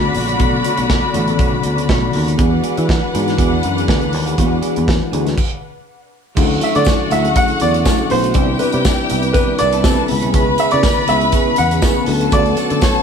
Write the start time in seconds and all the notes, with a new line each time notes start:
Already playing: D2 C#3 D3 B3 C#4 F#4 G#4 A4 D5 B5
0.02 muted clean electric guitar stroke
0.14 A#1, open hi-hat
0.26 A3 D4 F#4 C#5, closed hi-hat
0.37 B1 C#3 D3 A3 B3 D4 F#4 A4 C#5, kick, closed hi-hat
0.52 muted clean electric guitar stroke
0.62 A3 D4 F#4 C#5, closed hi-hat
0.76 B1 A3 D4 F#4 C#5, closed hi-hat
0.89 muted clean electric guitar stroke, kick, snare
1.03 muted clean electric guitar stroke
1.13 A1 D3 A3 B3 C#4 D4 F#4 A4 C#5, closed hi-hat
1.27 C#3 D3 B3 A4, muted clean electric guitar stroke, closed hi-hat
1.38 B1 A3 D4 F#4 C#5, kick, closed hi-hat
1.53 muted clean electric guitar stroke
1.63 D2, muted clean electric guitar stroke, closed hi-hat
1.77 A3 D4 F#4 C#5, closed hi-hat
1.89 B1 A3 D4 F#4 C#5, kick, snare
2.02 muted clean electric guitar stroke
2.13 D#2, muted clean electric guitar stroke, open hi-hat
2.26 A3 D4 F#4 C#5, closed hi-hat
2.37 E2 E3 G#3 B3 D4 F#4 G#4 B4 D5 F#5, kick, closed hi-hat
2.51 muted clean electric guitar stroke
2.63 B3 F#4 G#4 D5, closed hi-hat
2.77 E3 B3 F#4 G#4 D5, closed hi-hat
2.88 muted clean electric guitar stroke, kick, snare
3.03 muted clean electric guitar stroke
3.13 G#2 E3 G#3 B3 D4 F#4 G#4 D5, closed hi-hat
3.27 E3 G#3 D4 E4, muted clean electric guitar stroke, snare, closed hi-hat
3.37 E2 B3 F#4 G#4 D5, kick, closed hi-hat
3.51 muted clean electric guitar stroke
3.63 F#2, muted clean electric guitar stroke, closed hi-hat
3.77 B3 F#4 G#4 D5, closed hi-hat
3.88 D2 B3 F#4 G#4 D5, kick, snare
4.02 muted clean electric guitar stroke, closed hi-hat
4.13 D#2, muted clean electric guitar stroke, open hi-hat
4.26 B3 F#4 G#4 D5, closed hi-hat
4.37 E2 E3 G#3 B3 D4 F#4 G#4 D5, kick, closed hi-hat
4.51 muted clean electric guitar stroke
4.61 B3 F#4 G#4 D5, closed hi-hat
4.75 E2 B3 F#4 G#4 D5, closed hi-hat
4.87 muted clean electric guitar stroke, kick, snare
5.01 muted clean electric guitar stroke
5.12 D2 E3 G#3 B3 D4 E4 F#4 G#4 D5, closed hi-hat
5.25 E3 G#3 D4 F#4, muted clean electric guitar stroke, snare, closed hi-hat
5.38 kick, crash
6.35 D2 D3 F#3 A3 C#4 D4 E4 F#4 A4 C#5 F#5, kick, crash, tambourine
6.49 muted clean electric guitar stroke
6.60 A3 E4 F#4 C#5 E5, closed hi-hat, tambourine
6.73 D3 F#3 A3 D4 E4 F#4 A4 C#5 D5, closed hi-hat
6.84 muted clean electric guitar stroke, kick, snare, tambourine
7.10 D2 A3 E4 F#4 C#5 E5, closed hi-hat, tambourine
7.23 F#3 C#4 D4 E4 G#4, muted clean electric guitar stroke, closed hi-hat
7.34 A3 E4 F#4 C#5 F#5, kick, closed hi-hat, tambourine
7.47 F#3 C#4 D4 E4 A4, muted clean electric guitar stroke, closed hi-hat
7.58 D5, muted clean electric guitar stroke, closed hi-hat, tambourine
7.62 E2
7.72 A3 E4 F#4 C#5, closed hi-hat
7.83 A3 E4 F#4 C#5, kick, snare, tambourine
7.97 F#3 C#4 D4 E4 A4, muted clean electric guitar stroke
8.08 B1 C5, muted clean electric guitar stroke, open hi-hat, tambourine
8.22 A3 E4 F#4 C#5, closed hi-hat
8.34 C2 C3 G3 B3 C4 D4 E4 G4 B4 D5 G5, kick, closed hi-hat
8.48 muted clean electric guitar stroke
8.59 B3 E4 G4 B4 D5, closed hi-hat, tambourine
8.72 C3 G3 B3 C4 D4 D#4 E4 G4 B4 D5, closed hi-hat
8.80 E4
8.84 muted clean electric guitar stroke, kick, snare, tambourine
8.98 muted clean electric guitar stroke
9.09 C2 B3 E4 G4 D5, closed hi-hat, tambourine
9.22 G3 C4 D4 E4 B4, muted clean electric guitar stroke, closed hi-hat
9.33 B3 E4 G4 B4 D5, kick, closed hi-hat, tambourine
9.47 G3 C4 D4 E4 A#4, muted clean electric guitar stroke
9.55 B4, closed hi-hat
9.59 C2 A4 D5 A5, muted clean electric guitar stroke, tambourine
9.72 B3 E4 G4 D5, closed hi-hat
9.83 C3 B3 E4 G4 D5, kick, snare, tambourine
9.97 G3 C4 D4 E4 B4, muted clean electric guitar stroke
10.08 C#2 C#3 G#3 B3 C#4 E4 B4 B5, muted clean electric guitar stroke, open hi-hat, tambourine
10.21 C2 B3 E4 G#4 C#5, closed hi-hat
10.33 C#2 B3 E4 G#4 C#5, kick, closed hi-hat
10.47 muted clean electric guitar stroke
10.58 B3 E4 G#4 C#5 E5, closed hi-hat, tambourine
10.71 C#3 G#3 B3 E4 G#4 B4 C#5 D5, closed hi-hat
10.83 muted clean electric guitar stroke, kick, snare, tambourine
10.97 muted clean electric guitar stroke
11.08 C#2 B3 E4 G#4 C#5 E5, closed hi-hat, tambourine
11.21 G#3 B3 C#4 E4 B4, muted clean electric guitar stroke, closed hi-hat
11.32 B3 E4 G#4 C#5, kick, closed hi-hat, tambourine
11.46 G#3 B3 C#4 E4 B4, muted clean electric guitar stroke
11.56 E2 F#5, muted clean electric guitar stroke, closed hi-hat, tambourine
11.71 B3 E4 G#4 C#5, closed hi-hat
11.82 B3 E4 G#4 C#5, kick, snare, tambourine
11.95 G#3 B3 C#4 E4 B4, muted clean electric guitar stroke
12.06 D2 D3 F#3 A3 B3 C#4 D4 F#4 A4 A5, muted clean electric guitar stroke, open hi-hat, tambourine
12.21 A3 D4 F#4 C#5, closed hi-hat
12.30 D2 A3 D4 F#4 C#5 D5, kick, closed hi-hat, tambourine
12.46 muted clean electric guitar stroke, closed hi-hat
12.56 A3 D4 F#4 C#5, closed hi-hat, tambourine
12.69 D3 F#3 A3 B3 C#4 D4 F#4 A4 C#5, closed hi-hat
12.81 C#5, muted clean electric guitar stroke, kick, snare, tambourine
12.95 muted clean electric guitar stroke